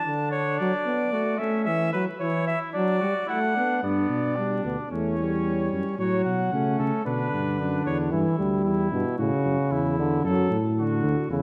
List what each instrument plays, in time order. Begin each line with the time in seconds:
Already playing: cornet A5
0.05 euphonium D3, trumpet D4
0.31 cornet C#5
0.58 euphonium F#3, cornet D5
0.86 euphonium B3
1.13 euphonium A3, trumpet F#4
1.38 euphonium A3, trumpet C#4, cornet E5
1.65 euphonium E3, cornet E5
1.93 euphonium F#3, cornet B4
2.19 euphonium E3, trumpet E4, cornet C#5
2.47 cornet E5
2.73 euphonium F#3, trumpet D4, cornet D5
3.00 euphonium G3, trumpet F#4
3.27 euphonium A3, trumpet E4, cornet F#5
3.55 euphonium B3, trumpet D4
3.82 tuba G2, trumpet B3, euphonium D4, cornet D5
4.09 tuba B2
4.36 euphonium G3, trumpet D4
4.64 tuba D2, euphonium B3
4.91 tuba E2, euphonium A3, trumpet C#4, cornet C#5
5.19 euphonium G3
5.72 tuba F#2
5.98 tuba A2, euphonium F#3, trumpet F#4, cornet C#5
6.25 tuba B2, cornet F#5
6.52 tuba C#3, euphonium A3, trumpet C#4
6.79 tuba C#3, cornet A4
7.05 tuba B2, euphonium D3, trumpet D4, cornet B4
7.32 tuba G2
7.59 tuba F#2, trumpet D4
7.86 tuba E2, cornet C#5
8.11 tuba G2, euphonium E3, trumpet E4
8.38 tuba D2, euphonium G3
8.65 tuba E2, trumpet E4
8.92 tuba G2, euphonium B2
9.18 tuba A2, euphonium C#3, trumpet F#4
9.45 tuba F#2
9.71 tuba E2, trumpet E4
9.99 euphonium D3
10.24 tuba F#2, euphonium F#3, trumpet A4
10.50 tuba A2
10.79 euphonium D3, trumpet F#4
11.03 tuba D2
11.30 tuba E2, euphonium C#3, trumpet E4